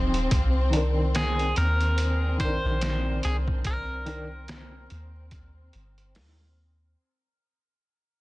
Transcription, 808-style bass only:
0.00 0.28 D#1 medium
0.32 1.54 C2 loud
1.57 2.37 D#2 medium
2.65 3.20 A#1 medium
3.25 4.87 C2 medium
4.91 5.71 D#2 medium
5.75 6.18 G1 medium
6.16 6.95 D#2 loud

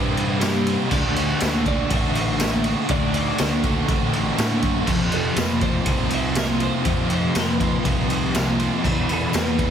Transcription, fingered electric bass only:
0.00 0.75 G2 loud
0.91 1.33 D2 loud
1.42 1.83 D2 loud
1.90 2.73 A1 medium
2.89 3.31 D2 loud
3.40 3.81 D2 loud
3.89 4.30 A1 medium
4.38 4.60 A2 medium
4.63 4.85 F#2 medium
4.88 5.29 F2 loud
5.36 5.78 F2 loud
5.86 6.69 C2 medium
6.85 7.27 F2 loud
7.36 7.77 F2 loud
7.85 8.68 C2 medium
8.85 9.26 E2 loud
9.34 9.70 E2 loud

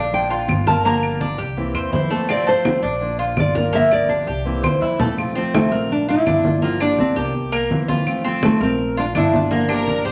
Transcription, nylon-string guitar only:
0.00 0.11 F5 medium
0.14 0.64 G5 medium
0.67 0.84 A5 loud
0.86 1.36 A#5 medium
1.95 2.28 C5 medium
2.30 2.47 D5 medium
2.49 2.98 C5 medium
3.40 3.72 D5 medium
3.75 3.92 E5 loud
3.93 4.42 D5 loud
5.55 5.71 A3 medium
5.73 5.91 C4 medium
5.92 6.08 D4 medium
6.10 6.64 E4 loud
6.64 6.80 F4 loud
6.82 7.00 D4 loud
7.00 7.18 C4 loud
7.18 7.53 A#3 medium
8.45 8.62 A3 medium
8.63 8.99 C4 medium
8.99 9.04 D4 loud
9.17 9.36 E4 loud
9.36 10.06 D4 medium

